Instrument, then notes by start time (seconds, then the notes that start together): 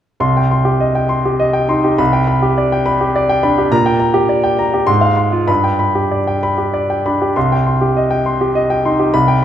grand piano
0.20 C2 C6
0.37 G5
0.51 C6
0.65 G4
0.81 D#5
0.95 G5
1.09 C6
1.25 G4
1.40 D#5
1.53 G5
1.68 D#4 C6
1.84 G4
1.98 C2 B5
2.13 G5
2.27 B5
2.42 G4
2.58 D5
2.72 G5
2.86 B5
3.01 G4
3.16 D5
3.29 G5
3.43 D4 B5
3.58 G4
3.71 A#2 A#5
3.86 G5
3.99 A#5
4.14 G4
4.29 D5
4.44 G5
4.59 A#5
4.74 G4
4.87 G#2 C6
5.01 F5
5.17 C6
5.32 F4
5.48 G2 B5
5.64 G5
5.79 B5
5.95 G4
6.11 D5
6.27 G5
6.43 B5
6.58 G4
6.74 D5
6.90 G5
7.06 D4 B5
7.22 G4
7.36 C2 C6
7.52 G5
7.66 C6
7.81 G4
7.97 D#5
8.11 G5
8.26 C6
8.41 G4
8.55 D#5
8.70 G5
8.85 D#4 C6
8.99 G4
9.14 C2 B5
9.28 G5